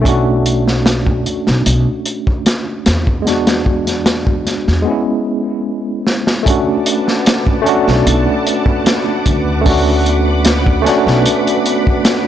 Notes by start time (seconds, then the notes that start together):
Already playing: B1
0.01 A3 C#4, kick
0.06 D4 F#4, closed hi-hat
0.46 closed hi-hat
0.68 snare
0.86 snare, closed hi-hat
1.07 kick
1.26 closed hi-hat
1.47 B1, snare
1.66 B1, closed hi-hat
2.06 closed hi-hat
2.27 kick
2.46 snare, closed hi-hat
2.86 E2, snare, closed hi-hat
3.07 kick
3.22 G#3 B3
3.27 D4 F#4, snare, closed hi-hat
3.47 snare, closed hi-hat
3.66 kick
3.87 snare, closed hi-hat
4.06 snare, closed hi-hat
4.27 kick
4.47 snare, closed hi-hat
4.68 E2, snare
4.82 G#3 B3
4.87 C#4 E4
6.07 snare
6.27 snare
6.43 A3 C#4 B4 F#5 A5 D6, kick, closed hi-hat
6.47 B3 D4 F#4 B4
6.86 closed hi-hat
7.08 snare
7.26 snare, closed hi-hat
7.47 kick
7.62 A3 C#4
7.66 D4 F#4, closed hi-hat
7.88 B1, snare
8.07 B1, closed hi-hat
8.47 closed hi-hat
8.66 kick
8.86 snare, closed hi-hat
9.26 D2, kick, closed hi-hat
9.61 A3 C#4
9.66 D4 F#4 B5, kick, open hi-hat
10.06 closed hi-hat
10.45 snare, closed hi-hat
10.66 kick
10.82 A3 C#4
10.86 D4 F#4, snare, closed hi-hat
11.07 B1, snare
11.26 closed hi-hat
11.47 closed hi-hat
11.66 closed hi-hat
11.87 kick
12.05 snare, closed hi-hat